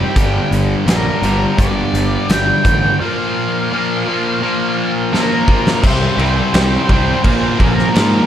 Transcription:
Already playing: overdriven electric guitar C3 G3 C4, lead electric guitar G4
0.15 picked electric bass G1, overdriven electric guitar G2 D3 G3, kick, closed hi-hat
0.51 picked electric bass G1, closed hi-hat
0.86 picked electric bass A#1, overdriven electric guitar G2 D3 G3, lead electric guitar A#4, snare, closed hi-hat
1.22 picked electric bass G1, overdriven electric guitar G2 D3 G3, closed hi-hat
1.57 picked electric bass G1, overdriven electric guitar G2 D3 G3, lead electric guitar D5, kick, closed hi-hat
1.93 picked electric bass G1, closed hi-hat
2.28 picked electric bass G1, overdriven electric guitar G2 D3 G3, lead electric guitar G5, snare, closed hi-hat
2.64 picked electric bass A1, overdriven electric guitar G2 D3 G3, kick, closed hi-hat
3.00 overdriven electric guitar A#2 F3 A#3, lead electric guitar F5
3.72 overdriven electric guitar A#2 F3 A#3
4.06 overdriven electric guitar A#2 F3 A#3
4.41 overdriven electric guitar A#2 F3 A#3
5.12 overdriven electric guitar A#2 F3 A#3, lead electric guitar A#4, snare
5.47 overdriven electric guitar A#2 F3 A#3, kick
5.67 snare
5.82 picked electric bass C2, overdriven electric guitar C3 G3 C4, lead electric guitar C5, kick, crash
6.17 picked electric bass C2, overdriven electric guitar C3 G3 C4, lead electric guitar C5, crash
6.53 picked electric bass C2, overdriven electric guitar C3 G3 C4, snare, crash
6.88 picked electric bass C2, overdriven electric guitar C3 G3 C4, kick, crash
6.93 lead electric guitar C5
7.23 picked electric bass A#1, overdriven electric guitar A#2 F3 A#3, kick, crash
7.27 lead electric guitar C5
7.60 picked electric bass A#1, overdriven electric guitar A#2 F3 A#3, lead electric guitar A#4, kick, crash
7.79 snare
7.93 picked electric bass G#2, overdriven electric guitar A#2 F3 A#3, snare, crash

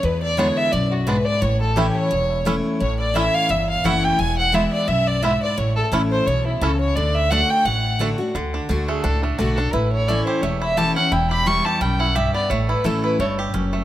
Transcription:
0.03 steel-string acoustic guitar E2, upright bass E2, fiddle B4
0.22 fiddle D5
0.37 steel-string acoustic guitar D3 G#3 B3 E4, five-string banjo G#3 B3 D4, fiddle C#5
0.57 fiddle E5
0.72 upright bass B1, steel-string acoustic guitar F#2, fiddle D5
0.91 fiddle F#4
1.06 steel-string acoustic guitar G#2, five-string banjo G#3 B3 D4, fiddle B4
1.25 fiddle D5
1.41 upright bass A1, steel-string acoustic guitar A2, fiddle C#5
1.60 fiddle A4
1.76 steel-string acoustic guitar E3 A3 C#4 E4, five-string banjo A3 C#4 E4, fiddle G4
1.95 fiddle C#5
2.11 upright bass E1, steel-string acoustic guitar E2
2.45 steel-string acoustic guitar E3 A3 C#4 E4, five-string banjo A3 C#4 E4
2.80 upright bass A1, steel-string acoustic guitar A2, fiddle C#5
2.99 fiddle D5
3.14 steel-string acoustic guitar E3 A3 C#4 E4, five-string banjo A3 C#4 E4, fiddle E5
3.34 fiddle F5
3.49 upright bass G1, steel-string acoustic guitar E2, fiddle E5
3.69 fiddle F5
3.84 upright bass F#1, steel-string acoustic guitar E3 A3 C#4 E4, five-string banjo A3 C#4 E4, fiddle F#5
4.03 fiddle G5
4.19 upright bass E1, steel-string acoustic guitar E2, fiddle G#5
4.38 fiddle F#5
4.52 steel-string acoustic guitar E3 G#3 B3 E4, five-string banjo G#3 B3 E4, fiddle E5
4.72 fiddle D5
4.87 upright bass B1, steel-string acoustic guitar F#2, fiddle E5
5.07 fiddle D5
5.22 steel-string acoustic guitar G#2, five-string banjo G#3 B3 E4, fiddle E5
5.42 fiddle D5
5.58 upright bass A1, steel-string acoustic guitar A2, fiddle C#5
5.76 fiddle A4
5.92 upright bass A1, steel-string acoustic guitar E3 A3 C#4 E4, five-string banjo A3 C#4 E4
6.11 fiddle C5
6.26 upright bass B1, steel-string acoustic guitar B2, fiddle C#5
6.46 fiddle E4
6.61 upright bass C#2, steel-string acoustic guitar C#3, five-string banjo A3 C#4 E4, fiddle A4
6.80 fiddle C#5
6.95 upright bass D2, steel-string acoustic guitar D3, fiddle D5
7.15 fiddle E5
7.30 steel-string acoustic guitar D3 A3 D4 F#4, five-string banjo A3 D4, fiddle F#5
7.50 fiddle G5
7.65 upright bass A1, steel-string acoustic guitar A2, fiddle F#5
7.99 steel-string acoustic guitar D3 A3 D4 F#4, five-string banjo A3 D4
8.18 steel-string acoustic guitar D4 F#4
8.35 upright bass D2, five-string banjo D3, steel-string acoustic guitar D3
8.54 five-string banjo D4
8.69 upright bass D2, steel-string acoustic guitar D3 A3 D4 F#4, five-string banjo D4
8.88 five-string banjo A3, fiddle G#4
9.02 upright bass C#2, steel-string acoustic guitar A2, five-string banjo D4, fiddle A4
9.22 five-string banjo A3, fiddle D4
9.38 upright bass B1, steel-string acoustic guitar D3 A3 D4 F#4, five-string banjo D4, fiddle F#4
9.56 five-string banjo D4, steel-string acoustic guitar D4 F#4, fiddle A4
9.73 upright bass A1, steel-string acoustic guitar A2, five-string banjo E4, fiddle B4
9.92 fiddle C#5
10.08 steel-string acoustic guitar E3 A3 C#4 E4, five-string banjo A3, fiddle D5
10.26 five-string banjo G4, fiddle C5
10.42 upright bass E1, steel-string acoustic guitar E2, five-string banjo A3, fiddle C#5
10.61 five-string banjo E4, fiddle E5
10.77 steel-string acoustic guitar E3 A3 C#4 E4, five-string banjo G4, fiddle A5
10.96 five-string banjo C#4, steel-string acoustic guitar C#4 E4, fiddle F#5
11.12 upright bass E1, steel-string acoustic guitar E2, five-string banjo E4, fiddle G5
11.30 five-string banjo G4, fiddle B5
11.46 steel-string acoustic guitar E3 G3 B3 E4, five-string banjo G3, fiddle C#6
11.65 five-string banjo G4, fiddle A5
11.81 upright bass B1, steel-string acoustic guitar F#2, five-string banjo G3, fiddle G5
11.99 five-string banjo E4, fiddle F#5
12.15 steel-string acoustic guitar G2, five-string banjo G4, fiddle E5
12.34 five-string banjo B3, fiddle D5
12.50 upright bass A1, steel-string acoustic guitar A2, five-string banjo A3, fiddle C#5
12.69 five-string banjo E4, fiddle B4
12.84 upright bass A1, steel-string acoustic guitar E3 A3 C#4 E4, five-string banjo A3, fiddle A4
13.04 five-string banjo E4, fiddle B4
13.19 upright bass G1, steel-string acoustic guitar G2, five-string banjo A3, fiddle C#5
13.39 five-string banjo G4
13.54 upright bass F#1, steel-string acoustic guitar F#2, five-string banjo C#4
13.73 five-string banjo A3

